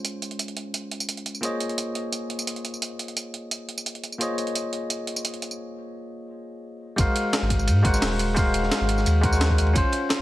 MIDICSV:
0, 0, Header, 1, 4, 480
1, 0, Start_track
1, 0, Tempo, 346821
1, 62, Time_signature, 4, 2, 24, 8
1, 14139, End_track
2, 0, Start_track
2, 0, Title_t, "Tine electric piano"
2, 0, Program_c, 0, 4
2, 0, Control_c, 0, 64, 127
2, 0, Note_on_c, 0, 56, 71
2, 0, Note_on_c, 0, 61, 69
2, 0, Note_on_c, 0, 65, 66
2, 0, Note_on_c, 0, 72, 80
2, 1938, Note_off_c, 0, 56, 0
2, 1944, Note_off_c, 0, 65, 0
2, 1947, Note_off_c, 0, 61, 0
2, 1950, Note_on_c, 0, 58, 71
2, 1960, Note_on_c, 0, 65, 65
2, 1967, Note_off_c, 0, 72, 0
2, 1973, Note_on_c, 0, 68, 66
2, 1984, Note_on_c, 0, 72, 66
2, 1996, Note_on_c, 0, 73, 66
2, 1999, Control_c, 0, 64, 0
2, 2007, Note_on_c, 0, 75, 79
2, 2241, Control_c, 0, 64, 127
2, 5774, Note_off_c, 0, 58, 0
2, 5783, Note_off_c, 0, 65, 0
2, 5790, Note_off_c, 0, 68, 0
2, 5791, Note_on_c, 0, 58, 74
2, 5795, Note_off_c, 0, 72, 0
2, 5801, Note_off_c, 0, 73, 0
2, 5802, Note_on_c, 0, 65, 70
2, 5807, Note_off_c, 0, 75, 0
2, 5814, Note_on_c, 0, 68, 67
2, 5826, Note_on_c, 0, 72, 68
2, 5837, Note_on_c, 0, 73, 68
2, 5850, Note_on_c, 0, 75, 79
2, 9618, Note_off_c, 0, 58, 0
2, 9624, Note_off_c, 0, 65, 0
2, 9630, Note_off_c, 0, 68, 0
2, 9636, Note_off_c, 0, 72, 0
2, 9636, Note_on_c, 0, 56, 95
2, 9642, Note_off_c, 0, 73, 0
2, 9648, Note_off_c, 0, 75, 0
2, 9651, Note_on_c, 0, 66, 89
2, 9667, Note_on_c, 0, 70, 86
2, 9678, Control_c, 0, 64, 0
2, 9680, Note_on_c, 0, 72, 86
2, 9696, Note_on_c, 0, 77, 105
2, 9924, Control_c, 0, 64, 127
2, 10811, Note_off_c, 0, 56, 0
2, 10828, Note_on_c, 0, 56, 99
2, 10829, Note_off_c, 0, 66, 0
2, 10837, Note_off_c, 0, 70, 0
2, 10843, Note_off_c, 0, 72, 0
2, 10843, Note_on_c, 0, 66, 88
2, 10851, Note_off_c, 0, 77, 0
2, 10857, Note_on_c, 0, 70, 92
2, 10872, Note_on_c, 0, 72, 94
2, 10886, Note_on_c, 0, 78, 110
2, 11534, Note_off_c, 0, 56, 0
2, 11544, Note_off_c, 0, 66, 0
2, 11551, Note_on_c, 0, 56, 94
2, 11552, Note_off_c, 0, 70, 0
2, 11559, Note_off_c, 0, 72, 0
2, 11565, Note_on_c, 0, 66, 85
2, 11566, Note_off_c, 0, 78, 0
2, 11580, Note_on_c, 0, 70, 86
2, 11594, Note_on_c, 0, 72, 90
2, 11609, Note_on_c, 0, 77, 108
2, 12734, Note_off_c, 0, 56, 0
2, 12746, Note_off_c, 0, 66, 0
2, 12751, Note_on_c, 0, 56, 98
2, 12753, Note_off_c, 0, 70, 0
2, 12760, Note_off_c, 0, 72, 0
2, 12766, Note_on_c, 0, 66, 90
2, 12768, Note_off_c, 0, 77, 0
2, 12780, Note_on_c, 0, 70, 92
2, 12795, Note_on_c, 0, 72, 92
2, 12809, Note_on_c, 0, 78, 111
2, 13459, Note_off_c, 0, 56, 0
2, 13466, Note_off_c, 0, 66, 0
2, 13472, Note_on_c, 0, 61, 94
2, 13473, Note_off_c, 0, 70, 0
2, 13481, Note_off_c, 0, 72, 0
2, 13488, Note_off_c, 0, 78, 0
2, 13501, Note_on_c, 0, 65, 87
2, 13521, Control_c, 0, 64, 0
2, 13531, Note_on_c, 0, 72, 108
2, 13800, Control_c, 0, 64, 127
2, 14139, Note_off_c, 0, 61, 0
2, 14139, Note_off_c, 0, 65, 0
2, 14139, Note_off_c, 0, 72, 0
2, 14139, End_track
3, 0, Start_track
3, 0, Title_t, "Sub bass"
3, 0, Program_c, 1, 38
3, 9663, Note_on_c, 1, 32, 103
3, 9774, Note_off_c, 1, 32, 0
3, 10266, Note_on_c, 1, 32, 97
3, 10624, Note_on_c, 1, 44, 86
3, 10645, Note_off_c, 1, 32, 0
3, 10840, Note_off_c, 1, 44, 0
3, 10861, Note_on_c, 1, 32, 83
3, 11078, Note_off_c, 1, 32, 0
3, 11104, Note_on_c, 1, 27, 88
3, 12045, Note_off_c, 1, 27, 0
3, 12187, Note_on_c, 1, 32, 98
3, 12524, Note_off_c, 1, 32, 0
3, 12545, Note_on_c, 1, 39, 90
3, 13485, Note_off_c, 1, 39, 0
3, 13503, Note_on_c, 1, 32, 104
3, 13614, Note_off_c, 1, 32, 0
3, 14139, End_track
4, 0, Start_track
4, 0, Title_t, "Drums"
4, 64, Note_on_c, 9, 42, 87
4, 64, Note_on_c, 9, 54, 44
4, 202, Note_off_c, 9, 42, 0
4, 202, Note_off_c, 9, 54, 0
4, 307, Note_on_c, 9, 42, 64
4, 307, Note_on_c, 9, 54, 25
4, 430, Note_off_c, 9, 42, 0
4, 430, Note_on_c, 9, 42, 34
4, 445, Note_off_c, 9, 54, 0
4, 544, Note_off_c, 9, 42, 0
4, 544, Note_on_c, 9, 42, 89
4, 544, Note_on_c, 9, 54, 46
4, 668, Note_off_c, 9, 42, 0
4, 668, Note_on_c, 9, 42, 34
4, 682, Note_off_c, 9, 54, 0
4, 783, Note_off_c, 9, 42, 0
4, 783, Note_on_c, 9, 42, 63
4, 921, Note_off_c, 9, 42, 0
4, 1025, Note_on_c, 9, 42, 85
4, 1025, Note_on_c, 9, 54, 44
4, 1163, Note_off_c, 9, 42, 0
4, 1163, Note_off_c, 9, 54, 0
4, 1266, Note_on_c, 9, 42, 63
4, 1388, Note_off_c, 9, 42, 0
4, 1388, Note_on_c, 9, 42, 35
4, 1388, Note_on_c, 9, 54, 54
4, 1504, Note_off_c, 9, 42, 0
4, 1504, Note_off_c, 9, 54, 0
4, 1504, Note_on_c, 9, 42, 89
4, 1504, Note_on_c, 9, 54, 46
4, 1625, Note_off_c, 9, 42, 0
4, 1625, Note_on_c, 9, 42, 34
4, 1642, Note_off_c, 9, 54, 0
4, 1743, Note_off_c, 9, 42, 0
4, 1743, Note_on_c, 9, 42, 61
4, 1743, Note_on_c, 9, 54, 25
4, 1864, Note_off_c, 9, 54, 0
4, 1864, Note_on_c, 9, 54, 26
4, 1882, Note_off_c, 9, 42, 0
4, 1981, Note_off_c, 9, 54, 0
4, 1981, Note_on_c, 9, 42, 85
4, 1981, Note_on_c, 9, 54, 45
4, 2119, Note_off_c, 9, 42, 0
4, 2119, Note_off_c, 9, 54, 0
4, 2221, Note_on_c, 9, 42, 62
4, 2221, Note_on_c, 9, 54, 26
4, 2345, Note_off_c, 9, 42, 0
4, 2345, Note_on_c, 9, 42, 34
4, 2359, Note_off_c, 9, 54, 0
4, 2463, Note_off_c, 9, 42, 0
4, 2463, Note_on_c, 9, 42, 84
4, 2463, Note_on_c, 9, 54, 45
4, 2602, Note_off_c, 9, 42, 0
4, 2602, Note_off_c, 9, 54, 0
4, 2703, Note_on_c, 9, 42, 61
4, 2841, Note_off_c, 9, 42, 0
4, 2941, Note_on_c, 9, 42, 82
4, 2941, Note_on_c, 9, 54, 45
4, 3080, Note_off_c, 9, 42, 0
4, 3080, Note_off_c, 9, 54, 0
4, 3182, Note_on_c, 9, 42, 60
4, 3305, Note_off_c, 9, 42, 0
4, 3305, Note_on_c, 9, 42, 34
4, 3305, Note_on_c, 9, 54, 54
4, 3423, Note_off_c, 9, 42, 0
4, 3423, Note_off_c, 9, 54, 0
4, 3423, Note_on_c, 9, 42, 85
4, 3423, Note_on_c, 9, 54, 45
4, 3547, Note_off_c, 9, 42, 0
4, 3547, Note_on_c, 9, 42, 33
4, 3561, Note_off_c, 9, 54, 0
4, 3663, Note_off_c, 9, 42, 0
4, 3663, Note_on_c, 9, 42, 60
4, 3663, Note_on_c, 9, 54, 26
4, 3788, Note_off_c, 9, 54, 0
4, 3788, Note_on_c, 9, 54, 25
4, 3801, Note_off_c, 9, 42, 0
4, 3903, Note_off_c, 9, 54, 0
4, 3903, Note_on_c, 9, 42, 85
4, 3903, Note_on_c, 9, 54, 47
4, 4042, Note_off_c, 9, 42, 0
4, 4042, Note_off_c, 9, 54, 0
4, 4143, Note_on_c, 9, 42, 59
4, 4143, Note_on_c, 9, 54, 27
4, 4267, Note_off_c, 9, 42, 0
4, 4267, Note_on_c, 9, 42, 33
4, 4282, Note_off_c, 9, 54, 0
4, 4383, Note_off_c, 9, 42, 0
4, 4383, Note_on_c, 9, 42, 86
4, 4383, Note_on_c, 9, 54, 47
4, 4521, Note_off_c, 9, 42, 0
4, 4521, Note_off_c, 9, 54, 0
4, 4622, Note_on_c, 9, 42, 61
4, 4760, Note_off_c, 9, 42, 0
4, 4862, Note_on_c, 9, 42, 85
4, 4862, Note_on_c, 9, 54, 45
4, 5001, Note_off_c, 9, 42, 0
4, 5001, Note_off_c, 9, 54, 0
4, 5102, Note_on_c, 9, 42, 60
4, 5227, Note_off_c, 9, 42, 0
4, 5227, Note_on_c, 9, 42, 34
4, 5227, Note_on_c, 9, 54, 58
4, 5345, Note_off_c, 9, 42, 0
4, 5345, Note_off_c, 9, 54, 0
4, 5345, Note_on_c, 9, 42, 84
4, 5345, Note_on_c, 9, 54, 48
4, 5468, Note_off_c, 9, 42, 0
4, 5468, Note_on_c, 9, 42, 33
4, 5483, Note_off_c, 9, 54, 0
4, 5585, Note_off_c, 9, 42, 0
4, 5585, Note_on_c, 9, 42, 61
4, 5585, Note_on_c, 9, 54, 26
4, 5708, Note_off_c, 9, 54, 0
4, 5708, Note_on_c, 9, 54, 27
4, 5723, Note_off_c, 9, 42, 0
4, 5824, Note_off_c, 9, 54, 0
4, 5824, Note_on_c, 9, 42, 87
4, 5824, Note_on_c, 9, 54, 48
4, 5963, Note_off_c, 9, 42, 0
4, 5963, Note_off_c, 9, 54, 0
4, 6063, Note_on_c, 9, 42, 64
4, 6063, Note_on_c, 9, 54, 28
4, 6186, Note_off_c, 9, 42, 0
4, 6186, Note_on_c, 9, 42, 34
4, 6201, Note_off_c, 9, 54, 0
4, 6304, Note_off_c, 9, 42, 0
4, 6304, Note_on_c, 9, 42, 90
4, 6304, Note_on_c, 9, 54, 49
4, 6442, Note_off_c, 9, 42, 0
4, 6442, Note_off_c, 9, 54, 0
4, 6543, Note_on_c, 9, 42, 63
4, 6682, Note_off_c, 9, 42, 0
4, 6784, Note_on_c, 9, 42, 86
4, 6784, Note_on_c, 9, 54, 48
4, 6922, Note_off_c, 9, 42, 0
4, 6922, Note_off_c, 9, 54, 0
4, 7022, Note_on_c, 9, 42, 63
4, 7146, Note_off_c, 9, 42, 0
4, 7146, Note_on_c, 9, 42, 35
4, 7146, Note_on_c, 9, 54, 58
4, 7262, Note_off_c, 9, 42, 0
4, 7262, Note_off_c, 9, 54, 0
4, 7262, Note_on_c, 9, 42, 85
4, 7262, Note_on_c, 9, 54, 50
4, 7386, Note_off_c, 9, 42, 0
4, 7386, Note_on_c, 9, 42, 35
4, 7401, Note_off_c, 9, 54, 0
4, 7504, Note_off_c, 9, 42, 0
4, 7504, Note_on_c, 9, 42, 61
4, 7504, Note_on_c, 9, 54, 27
4, 7627, Note_off_c, 9, 54, 0
4, 7627, Note_on_c, 9, 54, 28
4, 7642, Note_off_c, 9, 42, 0
4, 7765, Note_off_c, 9, 54, 0
4, 9663, Note_on_c, 9, 36, 120
4, 9663, Note_on_c, 9, 42, 85
4, 9663, Note_on_c, 9, 54, 51
4, 9665, Note_on_c, 9, 51, 83
4, 9801, Note_off_c, 9, 36, 0
4, 9802, Note_off_c, 9, 42, 0
4, 9802, Note_off_c, 9, 54, 0
4, 9803, Note_off_c, 9, 51, 0
4, 9905, Note_on_c, 9, 42, 100
4, 9911, Note_on_c, 9, 51, 70
4, 10043, Note_off_c, 9, 42, 0
4, 10050, Note_off_c, 9, 51, 0
4, 10143, Note_on_c, 9, 38, 122
4, 10147, Note_off_c, 9, 38, 0
4, 10147, Note_on_c, 9, 38, 121
4, 10147, Note_on_c, 9, 42, 87
4, 10147, Note_on_c, 9, 54, 54
4, 10151, Note_on_c, 9, 51, 85
4, 10263, Note_off_c, 9, 38, 0
4, 10263, Note_on_c, 9, 38, 58
4, 10286, Note_off_c, 9, 42, 0
4, 10286, Note_off_c, 9, 54, 0
4, 10290, Note_off_c, 9, 51, 0
4, 10372, Note_off_c, 9, 38, 0
4, 10372, Note_on_c, 9, 38, 43
4, 10381, Note_on_c, 9, 51, 72
4, 10382, Note_on_c, 9, 36, 63
4, 10385, Note_on_c, 9, 42, 98
4, 10510, Note_off_c, 9, 38, 0
4, 10510, Note_on_c, 9, 54, 29
4, 10519, Note_off_c, 9, 51, 0
4, 10520, Note_off_c, 9, 36, 0
4, 10523, Note_off_c, 9, 42, 0
4, 10620, Note_on_c, 9, 51, 90
4, 10624, Note_off_c, 9, 54, 0
4, 10624, Note_on_c, 9, 42, 83
4, 10624, Note_on_c, 9, 54, 54
4, 10759, Note_off_c, 9, 51, 0
4, 10763, Note_off_c, 9, 42, 0
4, 10763, Note_off_c, 9, 54, 0
4, 10857, Note_on_c, 9, 51, 73
4, 10861, Note_on_c, 9, 36, 110
4, 10864, Note_on_c, 9, 42, 101
4, 10985, Note_on_c, 9, 54, 65
4, 10990, Note_on_c, 9, 38, 44
4, 10995, Note_off_c, 9, 51, 0
4, 10999, Note_off_c, 9, 36, 0
4, 11002, Note_off_c, 9, 42, 0
4, 11097, Note_off_c, 9, 38, 0
4, 11097, Note_on_c, 9, 38, 107
4, 11101, Note_off_c, 9, 38, 0
4, 11101, Note_off_c, 9, 54, 0
4, 11101, Note_on_c, 9, 38, 120
4, 11101, Note_on_c, 9, 42, 85
4, 11101, Note_on_c, 9, 54, 53
4, 11108, Note_on_c, 9, 46, 76
4, 11239, Note_off_c, 9, 38, 0
4, 11239, Note_off_c, 9, 42, 0
4, 11239, Note_off_c, 9, 54, 0
4, 11246, Note_off_c, 9, 46, 0
4, 11341, Note_on_c, 9, 42, 96
4, 11341, Note_on_c, 9, 54, 29
4, 11350, Note_on_c, 9, 51, 71
4, 11479, Note_off_c, 9, 42, 0
4, 11479, Note_off_c, 9, 54, 0
4, 11488, Note_off_c, 9, 51, 0
4, 11571, Note_on_c, 9, 51, 96
4, 11580, Note_on_c, 9, 36, 125
4, 11582, Note_on_c, 9, 42, 85
4, 11582, Note_on_c, 9, 54, 51
4, 11709, Note_off_c, 9, 51, 0
4, 11718, Note_off_c, 9, 36, 0
4, 11720, Note_off_c, 9, 42, 0
4, 11720, Note_off_c, 9, 54, 0
4, 11819, Note_on_c, 9, 51, 71
4, 11821, Note_on_c, 9, 42, 101
4, 11946, Note_on_c, 9, 38, 50
4, 11957, Note_off_c, 9, 51, 0
4, 11959, Note_off_c, 9, 42, 0
4, 12061, Note_off_c, 9, 38, 0
4, 12061, Note_on_c, 9, 38, 117
4, 12062, Note_off_c, 9, 38, 0
4, 12062, Note_on_c, 9, 38, 127
4, 12062, Note_on_c, 9, 42, 83
4, 12062, Note_on_c, 9, 54, 52
4, 12066, Note_on_c, 9, 51, 89
4, 12191, Note_off_c, 9, 38, 0
4, 12191, Note_on_c, 9, 38, 43
4, 12200, Note_off_c, 9, 42, 0
4, 12200, Note_off_c, 9, 54, 0
4, 12204, Note_off_c, 9, 51, 0
4, 12301, Note_on_c, 9, 42, 97
4, 12305, Note_on_c, 9, 51, 69
4, 12330, Note_off_c, 9, 38, 0
4, 12425, Note_on_c, 9, 54, 28
4, 12426, Note_on_c, 9, 38, 49
4, 12440, Note_off_c, 9, 42, 0
4, 12444, Note_off_c, 9, 51, 0
4, 12542, Note_off_c, 9, 54, 0
4, 12542, Note_on_c, 9, 42, 84
4, 12542, Note_on_c, 9, 54, 50
4, 12548, Note_on_c, 9, 51, 86
4, 12564, Note_off_c, 9, 38, 0
4, 12680, Note_off_c, 9, 42, 0
4, 12680, Note_off_c, 9, 54, 0
4, 12687, Note_off_c, 9, 51, 0
4, 12780, Note_on_c, 9, 36, 116
4, 12781, Note_on_c, 9, 42, 99
4, 12783, Note_on_c, 9, 51, 67
4, 12906, Note_on_c, 9, 54, 62
4, 12914, Note_on_c, 9, 38, 52
4, 12919, Note_off_c, 9, 36, 0
4, 12920, Note_off_c, 9, 42, 0
4, 12921, Note_off_c, 9, 51, 0
4, 13021, Note_off_c, 9, 38, 0
4, 13021, Note_on_c, 9, 38, 115
4, 13022, Note_off_c, 9, 38, 0
4, 13022, Note_off_c, 9, 54, 0
4, 13022, Note_on_c, 9, 38, 127
4, 13022, Note_on_c, 9, 42, 87
4, 13022, Note_on_c, 9, 54, 51
4, 13030, Note_on_c, 9, 51, 90
4, 13126, Note_off_c, 9, 38, 0
4, 13126, Note_on_c, 9, 38, 59
4, 13144, Note_on_c, 9, 36, 63
4, 13161, Note_off_c, 9, 42, 0
4, 13161, Note_off_c, 9, 54, 0
4, 13168, Note_off_c, 9, 51, 0
4, 13264, Note_off_c, 9, 38, 0
4, 13264, Note_on_c, 9, 42, 96
4, 13264, Note_on_c, 9, 51, 72
4, 13264, Note_on_c, 9, 54, 28
4, 13283, Note_off_c, 9, 36, 0
4, 13378, Note_off_c, 9, 51, 0
4, 13378, Note_on_c, 9, 51, 46
4, 13403, Note_off_c, 9, 42, 0
4, 13403, Note_off_c, 9, 54, 0
4, 13498, Note_off_c, 9, 51, 0
4, 13498, Note_on_c, 9, 51, 82
4, 13501, Note_on_c, 9, 36, 124
4, 13503, Note_on_c, 9, 42, 85
4, 13503, Note_on_c, 9, 54, 50
4, 13637, Note_off_c, 9, 51, 0
4, 13640, Note_off_c, 9, 36, 0
4, 13641, Note_off_c, 9, 42, 0
4, 13641, Note_off_c, 9, 54, 0
4, 13733, Note_on_c, 9, 51, 64
4, 13742, Note_on_c, 9, 42, 99
4, 13872, Note_off_c, 9, 51, 0
4, 13880, Note_off_c, 9, 42, 0
4, 13969, Note_on_c, 9, 38, 104
4, 13982, Note_off_c, 9, 38, 0
4, 13982, Note_on_c, 9, 38, 127
4, 13982, Note_on_c, 9, 42, 84
4, 13982, Note_on_c, 9, 54, 51
4, 13984, Note_on_c, 9, 51, 84
4, 14121, Note_off_c, 9, 38, 0
4, 14121, Note_off_c, 9, 42, 0
4, 14121, Note_off_c, 9, 54, 0
4, 14123, Note_off_c, 9, 51, 0
4, 14139, End_track
0, 0, End_of_file